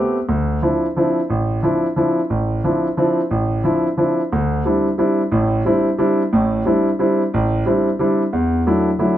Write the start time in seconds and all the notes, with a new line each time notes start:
Already playing: A3 B3 C4 G4
0.29 D2
0.62 F3 C4 D4 E4
0.97 F3 C4 D4 E4
1.30 A1
1.63 F3 C4 D4 E4
1.96 F3 C4 D4 E4
2.30 A1
2.64 F3 C4 D4 E4
2.97 F3 C4 D4 E4
3.31 A1
3.64 F3 C4 D4 E4
3.97 F3 C4 D4 E4
4.33 D2
4.65 G3 C4 D4 E4
4.98 G3 C4 D4 E4
5.32 A1 A2
5.65 G3 C4 D4 E4
5.98 G3 C4 D4 E4
6.33 A1 A2
6.65 G3 C4 D4 E4
6.99 G3 C4 D4 E4
7.34 A1
7.66 G3 C4 D4 E4
7.99 G3 C4 D4 E4
8.33 E2
8.66 F#3 A3 D4 E4
8.99 F#3 A3 D4 E4